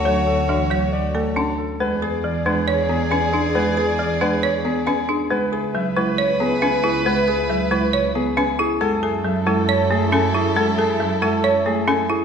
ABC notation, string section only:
X:1
M:4/4
L:1/8
Q:1/4=137
K:Emix
V:1 name="String section"
[Fc]6- [Fc] z | [Gd]8- | [Gd]6- [Gd] z | [EB]8- |
[EB]6- [EB] z | [EA]8- | [EA]6- [EA] z |]